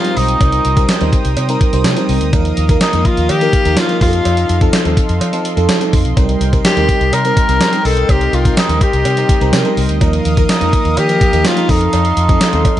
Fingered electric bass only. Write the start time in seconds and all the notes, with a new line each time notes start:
0.17 B1
0.41 C2
0.65 C2
1.01 D#2
1.25 C2
1.37 C3
1.73 C2
1.85 C3
2.09 C2
2.21 D2
2.33 D#2
2.58 D#2
2.93 F2
3.18 D#2
3.30 D#3
3.66 D#2
4.01 F2
4.25 F2
4.49 F2
4.85 D#2
5.09 F2
5.21 F3
5.57 F2
5.69 F3
5.93 F2
6.05 B1
6.17 C2
6.41 C2
6.77 D#2
7.01 C2
7.13 C3
7.49 C2
7.85 B1
8.09 C2
8.33 C2
8.69 D#2
8.93 C2
9.05 C3
9.41 C2
9.53 C3
9.77 C2
9.89 D2
10.01 D#2
10.25 D#2
10.61 F2
10.85 D#2
10.97 D#3
11.33 D#2
11.69 F2
11.93 F2
12.17 F2
12.53 D#2